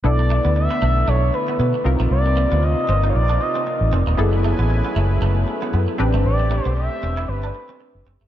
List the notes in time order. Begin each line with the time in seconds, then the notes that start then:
0.04 B1 D3 A3 B3 D4 E4 A4 D5
0.19 muted clean electric guitar stroke
0.30 A3
0.45 D2 B3
0.56 E5, muted clean electric guitar stroke
0.71 B3
0.82 B1 A3
1.08 B1 A3 C#5
1.34 B4, muted clean electric guitar stroke
1.48 B3
1.59 B2 B3
1.74 muted clean electric guitar stroke
1.84 C2 C3 A#3 C4 D#4 F4 A#4
2.00 A#1 A3
2.11 C2 D5
2.26 muted clean electric guitar stroke
2.37 A#3
2.52 D2 B3
2.63 D#5, muted clean electric guitar stroke
2.89 G1 C4
3.04 D#4
3.10 C#5
3.15 A#1 D5
3.29 D4
3.41 D#5, muted clean electric guitar stroke
3.55 C4
3.67 muted clean electric guitar stroke
3.81 A1
3.92 F1 C4
4.07 D#1 A#3
4.17 F#1 F#3 A3 B3 C#4 E4 G#4 A4 B4 G#5
4.33 muted clean electric guitar stroke
4.44 A3
4.59 A1 B3
4.70 muted clean electric guitar stroke
4.85 B3
4.96 F#1 A3
5.22 F#1 A3
5.48 muted clean electric guitar stroke
5.62 B3
5.74 F#2 B3
5.88 muted clean electric guitar stroke
5.98 A1 A3 C4 D4 G4 B4
6.14 G1 A3
6.25 A1 D5
6.40 muted clean electric guitar stroke
6.51 A3
6.65 B1 B3
6.77 E5, muted clean electric guitar stroke
7.03 E1 C4
7.17 E4
7.28 G1 B4
7.43 D4
7.55 muted clean electric guitar stroke
7.69 C4
7.81 muted clean electric guitar stroke
7.95 F#1
8.06 F#1 C4
8.21 G1 A3